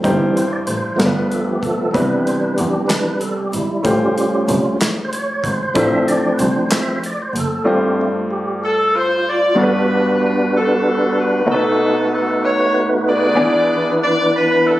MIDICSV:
0, 0, Header, 1, 6, 480
1, 0, Start_track
1, 0, Tempo, 634921
1, 29, Time_signature, 6, 3, 24, 8
1, 11187, End_track
2, 0, Start_track
2, 0, Title_t, "Saxophone section"
2, 0, Program_c, 0, 65
2, 6540, Note_on_c, 0, 69, 82
2, 6750, Note_off_c, 0, 69, 0
2, 6771, Note_on_c, 0, 72, 78
2, 7001, Note_off_c, 0, 72, 0
2, 7022, Note_on_c, 0, 74, 85
2, 7246, Note_off_c, 0, 74, 0
2, 7251, Note_on_c, 0, 62, 65
2, 7252, Note_on_c, 0, 66, 65
2, 7265, Note_on_c, 0, 71, 88
2, 7727, Note_off_c, 0, 71, 0
2, 7747, Note_on_c, 0, 71, 89
2, 7930, Note_off_c, 0, 62, 0
2, 7931, Note_off_c, 0, 66, 0
2, 7953, Note_off_c, 0, 71, 0
2, 7977, Note_on_c, 0, 66, 63
2, 7980, Note_on_c, 0, 62, 65
2, 7987, Note_on_c, 0, 69, 83
2, 8449, Note_off_c, 0, 69, 0
2, 8461, Note_on_c, 0, 71, 89
2, 8653, Note_off_c, 0, 66, 0
2, 8654, Note_off_c, 0, 62, 0
2, 8685, Note_off_c, 0, 71, 0
2, 8689, Note_on_c, 0, 66, 73
2, 8696, Note_on_c, 0, 63, 78
2, 8700, Note_on_c, 0, 69, 90
2, 9165, Note_off_c, 0, 69, 0
2, 9174, Note_on_c, 0, 69, 86
2, 9369, Note_off_c, 0, 66, 0
2, 9373, Note_off_c, 0, 63, 0
2, 9386, Note_off_c, 0, 69, 0
2, 9412, Note_on_c, 0, 73, 99
2, 9677, Note_off_c, 0, 73, 0
2, 9888, Note_on_c, 0, 68, 80
2, 9890, Note_on_c, 0, 71, 74
2, 9892, Note_on_c, 0, 74, 104
2, 10568, Note_off_c, 0, 68, 0
2, 10569, Note_off_c, 0, 71, 0
2, 10570, Note_off_c, 0, 74, 0
2, 10613, Note_on_c, 0, 74, 106
2, 10825, Note_off_c, 0, 74, 0
2, 10859, Note_on_c, 0, 71, 97
2, 11068, Note_off_c, 0, 71, 0
2, 11093, Note_on_c, 0, 69, 83
2, 11187, Note_off_c, 0, 69, 0
2, 11187, End_track
3, 0, Start_track
3, 0, Title_t, "Tonewheel organ"
3, 0, Program_c, 1, 16
3, 13, Note_on_c, 1, 52, 49
3, 21, Note_on_c, 1, 55, 44
3, 32, Note_on_c, 1, 60, 58
3, 274, Note_on_c, 1, 72, 92
3, 340, Note_off_c, 1, 52, 0
3, 344, Note_off_c, 1, 55, 0
3, 350, Note_off_c, 1, 60, 0
3, 395, Note_off_c, 1, 72, 0
3, 399, Note_on_c, 1, 74, 89
3, 451, Note_off_c, 1, 74, 0
3, 506, Note_on_c, 1, 72, 76
3, 720, Note_on_c, 1, 53, 50
3, 726, Note_on_c, 1, 57, 40
3, 731, Note_on_c, 1, 59, 48
3, 740, Note_on_c, 1, 71, 78
3, 755, Note_off_c, 1, 72, 0
3, 987, Note_on_c, 1, 69, 73
3, 992, Note_off_c, 1, 71, 0
3, 1100, Note_off_c, 1, 69, 0
3, 1105, Note_on_c, 1, 67, 74
3, 1225, Note_on_c, 1, 69, 80
3, 1231, Note_off_c, 1, 67, 0
3, 1425, Note_off_c, 1, 53, 0
3, 1428, Note_off_c, 1, 57, 0
3, 1430, Note_off_c, 1, 59, 0
3, 1446, Note_on_c, 1, 52, 51
3, 1454, Note_on_c, 1, 55, 46
3, 1467, Note_on_c, 1, 62, 58
3, 1467, Note_on_c, 1, 71, 90
3, 1475, Note_off_c, 1, 69, 0
3, 1716, Note_off_c, 1, 71, 0
3, 1716, Note_on_c, 1, 72, 90
3, 1825, Note_off_c, 1, 72, 0
3, 1830, Note_on_c, 1, 71, 85
3, 1939, Note_on_c, 1, 67, 74
3, 1942, Note_off_c, 1, 71, 0
3, 2156, Note_off_c, 1, 52, 0
3, 2161, Note_off_c, 1, 62, 0
3, 2165, Note_on_c, 1, 52, 39
3, 2170, Note_on_c, 1, 62, 43
3, 2174, Note_on_c, 1, 71, 70
3, 2192, Note_off_c, 1, 67, 0
3, 2393, Note_off_c, 1, 52, 0
3, 2395, Note_off_c, 1, 62, 0
3, 2420, Note_on_c, 1, 69, 75
3, 2430, Note_off_c, 1, 71, 0
3, 2545, Note_on_c, 1, 67, 74
3, 2549, Note_off_c, 1, 69, 0
3, 2669, Note_on_c, 1, 64, 69
3, 2672, Note_off_c, 1, 67, 0
3, 2873, Note_off_c, 1, 55, 0
3, 2917, Note_off_c, 1, 64, 0
3, 2919, Note_on_c, 1, 55, 52
3, 2923, Note_on_c, 1, 61, 51
3, 2923, Note_on_c, 1, 65, 59
3, 2928, Note_on_c, 1, 67, 81
3, 3369, Note_off_c, 1, 67, 0
3, 3605, Note_off_c, 1, 55, 0
3, 3607, Note_off_c, 1, 61, 0
3, 3607, Note_off_c, 1, 65, 0
3, 3816, Note_on_c, 1, 72, 72
3, 3870, Note_off_c, 1, 72, 0
3, 3877, Note_on_c, 1, 73, 83
3, 4110, Note_on_c, 1, 72, 92
3, 4121, Note_off_c, 1, 73, 0
3, 4341, Note_on_c, 1, 53, 58
3, 4346, Note_on_c, 1, 76, 110
3, 4348, Note_on_c, 1, 60, 50
3, 4348, Note_on_c, 1, 62, 63
3, 4358, Note_off_c, 1, 72, 0
3, 4593, Note_on_c, 1, 74, 91
3, 4596, Note_off_c, 1, 76, 0
3, 4782, Note_on_c, 1, 71, 68
3, 4785, Note_off_c, 1, 74, 0
3, 4832, Note_on_c, 1, 72, 89
3, 4833, Note_off_c, 1, 71, 0
3, 5035, Note_off_c, 1, 53, 0
3, 5039, Note_off_c, 1, 60, 0
3, 5039, Note_off_c, 1, 62, 0
3, 5061, Note_on_c, 1, 53, 39
3, 5067, Note_on_c, 1, 76, 49
3, 5068, Note_off_c, 1, 72, 0
3, 5069, Note_on_c, 1, 60, 42
3, 5077, Note_on_c, 1, 72, 87
3, 5281, Note_off_c, 1, 53, 0
3, 5285, Note_off_c, 1, 76, 0
3, 5286, Note_off_c, 1, 60, 0
3, 5297, Note_off_c, 1, 72, 0
3, 5336, Note_on_c, 1, 74, 91
3, 5446, Note_off_c, 1, 74, 0
3, 5458, Note_on_c, 1, 72, 86
3, 5557, Note_off_c, 1, 72, 0
3, 5576, Note_on_c, 1, 69, 85
3, 5798, Note_on_c, 1, 57, 63
3, 5800, Note_on_c, 1, 60, 51
3, 5810, Note_off_c, 1, 69, 0
3, 5814, Note_on_c, 1, 67, 95
3, 5816, Note_on_c, 1, 65, 62
3, 6049, Note_off_c, 1, 65, 0
3, 6049, Note_off_c, 1, 67, 0
3, 6058, Note_on_c, 1, 65, 89
3, 6113, Note_off_c, 1, 57, 0
3, 6115, Note_off_c, 1, 60, 0
3, 6160, Note_off_c, 1, 65, 0
3, 6279, Note_on_c, 1, 67, 77
3, 6522, Note_off_c, 1, 67, 0
3, 6528, Note_on_c, 1, 69, 73
3, 6743, Note_off_c, 1, 69, 0
3, 6769, Note_on_c, 1, 65, 72
3, 7209, Note_off_c, 1, 65, 0
3, 7215, Note_on_c, 1, 62, 63
3, 7219, Note_on_c, 1, 66, 58
3, 7222, Note_on_c, 1, 71, 74
3, 7226, Note_on_c, 1, 55, 67
3, 7229, Note_on_c, 1, 59, 61
3, 8633, Note_off_c, 1, 62, 0
3, 8635, Note_off_c, 1, 66, 0
3, 8637, Note_off_c, 1, 71, 0
3, 8639, Note_off_c, 1, 55, 0
3, 8640, Note_off_c, 1, 59, 0
3, 8677, Note_on_c, 1, 71, 69
3, 8678, Note_on_c, 1, 66, 61
3, 8681, Note_on_c, 1, 63, 65
3, 8682, Note_on_c, 1, 59, 64
3, 8684, Note_on_c, 1, 57, 66
3, 10084, Note_off_c, 1, 66, 0
3, 10084, Note_off_c, 1, 71, 0
3, 10086, Note_off_c, 1, 59, 0
3, 10086, Note_off_c, 1, 63, 0
3, 10088, Note_off_c, 1, 57, 0
3, 10114, Note_on_c, 1, 52, 71
3, 10118, Note_on_c, 1, 64, 65
3, 10122, Note_on_c, 1, 62, 66
3, 10123, Note_on_c, 1, 70, 65
3, 10124, Note_on_c, 1, 59, 68
3, 10165, Note_off_c, 1, 70, 0
3, 10172, Note_on_c, 1, 71, 78
3, 11187, Note_off_c, 1, 52, 0
3, 11187, Note_off_c, 1, 59, 0
3, 11187, Note_off_c, 1, 62, 0
3, 11187, Note_off_c, 1, 64, 0
3, 11187, Note_off_c, 1, 71, 0
3, 11187, End_track
4, 0, Start_track
4, 0, Title_t, "Grand piano"
4, 0, Program_c, 2, 0
4, 0, Control_c, 2, 64, 127
4, 27, Note_on_c, 2, 63, 59
4, 33, Note_on_c, 2, 67, 66
4, 34, Note_on_c, 2, 43, 71
4, 36, Note_on_c, 2, 72, 77
4, 40, Control_c, 2, 64, 0
4, 76, Note_on_c, 2, 64, 68
4, 77, Note_off_c, 2, 63, 0
4, 190, Control_c, 2, 64, 127
4, 722, Note_off_c, 2, 43, 0
4, 744, Note_on_c, 2, 59, 62
4, 745, Note_on_c, 2, 55, 60
4, 748, Note_on_c, 2, 43, 64
4, 749, Note_on_c, 2, 62, 58
4, 750, Note_on_c, 2, 65, 57
4, 752, Note_off_c, 2, 67, 0
4, 753, Note_off_c, 2, 72, 0
4, 756, Note_on_c, 2, 70, 52
4, 760, Control_c, 2, 64, 0
4, 773, Note_off_c, 2, 64, 0
4, 798, Note_on_c, 2, 71, 73
4, 802, Note_off_c, 2, 70, 0
4, 894, Control_c, 2, 64, 127
4, 1439, Note_off_c, 2, 43, 0
4, 1448, Note_off_c, 2, 55, 0
4, 1453, Note_off_c, 2, 59, 0
4, 1460, Note_on_c, 2, 55, 59
4, 1463, Note_off_c, 2, 71, 0
4, 1465, Note_on_c, 2, 59, 58
4, 1467, Note_on_c, 2, 48, 61
4, 1469, Note_on_c, 2, 60, 59
4, 1470, Note_off_c, 2, 62, 0
4, 1470, Note_off_c, 2, 65, 0
4, 1474, Note_on_c, 2, 71, 68
4, 1475, Note_on_c, 2, 64, 54
4, 1480, Control_c, 2, 64, 0
4, 1632, Control_c, 2, 64, 127
4, 2159, Note_off_c, 2, 48, 0
4, 2876, Note_off_c, 2, 55, 0
4, 2879, Note_off_c, 2, 59, 0
4, 2881, Note_off_c, 2, 60, 0
4, 2884, Note_off_c, 2, 64, 0
4, 2884, Note_off_c, 2, 71, 0
4, 2894, Note_on_c, 2, 57, 63
4, 2900, Note_on_c, 2, 61, 57
4, 2905, Note_on_c, 2, 65, 55
4, 2907, Note_on_c, 2, 45, 61
4, 2909, Note_on_c, 2, 67, 54
4, 2915, Note_on_c, 2, 72, 72
4, 2920, Control_c, 2, 64, 0
4, 3033, Control_c, 2, 64, 127
4, 3599, Note_off_c, 2, 45, 0
4, 4313, Note_off_c, 2, 57, 0
4, 4317, Note_off_c, 2, 61, 0
4, 4319, Note_off_c, 2, 65, 0
4, 4321, Note_off_c, 2, 67, 0
4, 4324, Note_off_c, 2, 72, 0
4, 4345, Note_on_c, 2, 57, 68
4, 4347, Note_on_c, 2, 62, 58
4, 4354, Note_on_c, 2, 45, 68
4, 4355, Note_on_c, 2, 64, 66
4, 4358, Note_on_c, 2, 65, 63
4, 4362, Control_c, 2, 64, 0
4, 4363, Note_on_c, 2, 72, 75
4, 4481, Control_c, 2, 64, 127
4, 5042, Note_off_c, 2, 45, 0
4, 5759, Note_off_c, 2, 57, 0
4, 5760, Note_off_c, 2, 62, 0
4, 5764, Note_off_c, 2, 64, 0
4, 5766, Note_off_c, 2, 65, 0
4, 5768, Note_off_c, 2, 72, 0
4, 5777, Note_on_c, 2, 57, 68
4, 5782, Note_on_c, 2, 62, 63
4, 5784, Note_on_c, 2, 65, 66
4, 5786, Note_on_c, 2, 43, 71
4, 5791, Note_on_c, 2, 67, 62
4, 5796, Note_on_c, 2, 72, 73
4, 5799, Control_c, 2, 64, 0
4, 5930, Control_c, 2, 64, 127
4, 6478, Note_off_c, 2, 43, 0
4, 7194, Note_off_c, 2, 57, 0
4, 7197, Note_off_c, 2, 62, 0
4, 7198, Note_off_c, 2, 65, 0
4, 7202, Note_off_c, 2, 67, 0
4, 7204, Note_off_c, 2, 72, 0
4, 7218, Note_on_c, 2, 55, 60
4, 7223, Note_on_c, 2, 59, 64
4, 7224, Note_on_c, 2, 43, 70
4, 7228, Note_on_c, 2, 62, 59
4, 7232, Note_on_c, 2, 66, 58
4, 7237, Note_on_c, 2, 69, 64
4, 7240, Control_c, 2, 64, 0
4, 7283, Note_off_c, 2, 69, 0
4, 7283, Note_on_c, 2, 71, 77
4, 7369, Control_c, 2, 64, 127
4, 7917, Note_off_c, 2, 43, 0
4, 8635, Note_off_c, 2, 55, 0
4, 8637, Note_off_c, 2, 59, 0
4, 8640, Note_off_c, 2, 62, 0
4, 8642, Note_off_c, 2, 66, 0
4, 8658, Note_on_c, 2, 57, 70
4, 8666, Note_on_c, 2, 59, 59
4, 8666, Note_on_c, 2, 63, 64
4, 8668, Note_off_c, 2, 71, 0
4, 8669, Note_on_c, 2, 47, 67
4, 8673, Note_on_c, 2, 66, 58
4, 8676, Note_on_c, 2, 70, 61
4, 8680, Control_c, 2, 64, 0
4, 8722, Note_off_c, 2, 70, 0
4, 8726, Note_on_c, 2, 71, 77
4, 8800, Control_c, 2, 64, 127
4, 9359, Note_off_c, 2, 47, 0
4, 10074, Note_off_c, 2, 57, 0
4, 10078, Note_off_c, 2, 59, 0
4, 10079, Note_off_c, 2, 63, 0
4, 10082, Note_off_c, 2, 66, 0
4, 10092, Note_on_c, 2, 59, 76
4, 10097, Note_on_c, 2, 62, 66
4, 10100, Note_on_c, 2, 52, 64
4, 10103, Note_on_c, 2, 64, 66
4, 10104, Note_on_c, 2, 80, 62
4, 10109, Note_off_c, 2, 71, 0
4, 10109, Note_on_c, 2, 74, 82
4, 10118, Control_c, 2, 64, 0
4, 10264, Control_c, 2, 64, 127
4, 10794, Note_off_c, 2, 52, 0
4, 11187, Note_off_c, 2, 59, 0
4, 11187, Note_off_c, 2, 62, 0
4, 11187, Note_off_c, 2, 64, 0
4, 11187, Note_off_c, 2, 74, 0
4, 11187, Note_off_c, 2, 80, 0
4, 11187, End_track
5, 0, Start_track
5, 0, Title_t, "Double bass"
5, 0, Program_c, 3, 43
5, 32, Note_on_c, 3, 31, 81
5, 93, Note_off_c, 3, 31, 0
5, 515, Note_on_c, 3, 33, 75
5, 575, Note_off_c, 3, 33, 0
5, 756, Note_on_c, 3, 31, 94
5, 816, Note_off_c, 3, 31, 0
5, 1229, Note_on_c, 3, 35, 60
5, 1290, Note_off_c, 3, 35, 0
5, 1473, Note_on_c, 3, 36, 85
5, 1533, Note_off_c, 3, 36, 0
5, 1952, Note_on_c, 3, 40, 82
5, 2013, Note_off_c, 3, 40, 0
5, 2668, Note_on_c, 3, 32, 72
5, 2728, Note_off_c, 3, 32, 0
5, 2908, Note_on_c, 3, 33, 93
5, 2969, Note_off_c, 3, 33, 0
5, 3389, Note_on_c, 3, 36, 93
5, 3449, Note_off_c, 3, 36, 0
5, 4113, Note_on_c, 3, 32, 72
5, 4173, Note_off_c, 3, 32, 0
5, 4350, Note_on_c, 3, 33, 96
5, 4410, Note_off_c, 3, 33, 0
5, 4832, Note_on_c, 3, 36, 87
5, 4893, Note_off_c, 3, 36, 0
5, 5550, Note_on_c, 3, 30, 75
5, 5610, Note_off_c, 3, 30, 0
5, 11187, End_track
6, 0, Start_track
6, 0, Title_t, "Drums"
6, 31, Note_on_c, 9, 36, 108
6, 32, Note_on_c, 9, 42, 72
6, 107, Note_off_c, 9, 36, 0
6, 107, Note_off_c, 9, 42, 0
6, 279, Note_on_c, 9, 42, 43
6, 355, Note_off_c, 9, 42, 0
6, 506, Note_on_c, 9, 42, 47
6, 582, Note_off_c, 9, 42, 0
6, 753, Note_on_c, 9, 42, 74
6, 755, Note_on_c, 9, 38, 96
6, 828, Note_off_c, 9, 42, 0
6, 831, Note_off_c, 9, 38, 0
6, 994, Note_on_c, 9, 42, 47
6, 1070, Note_off_c, 9, 42, 0
6, 1230, Note_on_c, 9, 36, 77
6, 1235, Note_on_c, 9, 42, 46
6, 1305, Note_off_c, 9, 36, 0
6, 1310, Note_off_c, 9, 42, 0
6, 1470, Note_on_c, 9, 36, 103
6, 1475, Note_on_c, 9, 42, 68
6, 1545, Note_off_c, 9, 36, 0
6, 1551, Note_off_c, 9, 42, 0
6, 1716, Note_on_c, 9, 42, 46
6, 1791, Note_off_c, 9, 42, 0
6, 1949, Note_on_c, 9, 42, 53
6, 2024, Note_off_c, 9, 42, 0
6, 2192, Note_on_c, 9, 39, 95
6, 2192, Note_on_c, 9, 42, 78
6, 2194, Note_on_c, 9, 38, 98
6, 2267, Note_off_c, 9, 42, 0
6, 2268, Note_off_c, 9, 39, 0
6, 2270, Note_off_c, 9, 38, 0
6, 2425, Note_on_c, 9, 42, 50
6, 2500, Note_off_c, 9, 42, 0
6, 2671, Note_on_c, 9, 42, 49
6, 2747, Note_off_c, 9, 42, 0
6, 2908, Note_on_c, 9, 36, 119
6, 2908, Note_on_c, 9, 42, 72
6, 2984, Note_off_c, 9, 36, 0
6, 2984, Note_off_c, 9, 42, 0
6, 3157, Note_on_c, 9, 42, 43
6, 3232, Note_off_c, 9, 42, 0
6, 3391, Note_on_c, 9, 42, 54
6, 3467, Note_off_c, 9, 42, 0
6, 3638, Note_on_c, 9, 42, 78
6, 3639, Note_on_c, 9, 39, 91
6, 3641, Note_on_c, 9, 38, 95
6, 3714, Note_off_c, 9, 42, 0
6, 3715, Note_off_c, 9, 39, 0
6, 3716, Note_off_c, 9, 38, 0
6, 3876, Note_on_c, 9, 42, 47
6, 3952, Note_off_c, 9, 42, 0
6, 4110, Note_on_c, 9, 36, 84
6, 4116, Note_on_c, 9, 42, 55
6, 4186, Note_off_c, 9, 36, 0
6, 4192, Note_off_c, 9, 42, 0
6, 4350, Note_on_c, 9, 42, 81
6, 4351, Note_on_c, 9, 36, 110
6, 4425, Note_off_c, 9, 42, 0
6, 4427, Note_off_c, 9, 36, 0
6, 4597, Note_on_c, 9, 42, 45
6, 4673, Note_off_c, 9, 42, 0
6, 4831, Note_on_c, 9, 42, 55
6, 4906, Note_off_c, 9, 42, 0
6, 5075, Note_on_c, 9, 39, 95
6, 5076, Note_on_c, 9, 42, 84
6, 5079, Note_on_c, 9, 38, 92
6, 5151, Note_off_c, 9, 39, 0
6, 5152, Note_off_c, 9, 42, 0
6, 5154, Note_off_c, 9, 38, 0
6, 5319, Note_on_c, 9, 42, 49
6, 5395, Note_off_c, 9, 42, 0
6, 5561, Note_on_c, 9, 42, 52
6, 5637, Note_off_c, 9, 42, 0
6, 11187, End_track
0, 0, End_of_file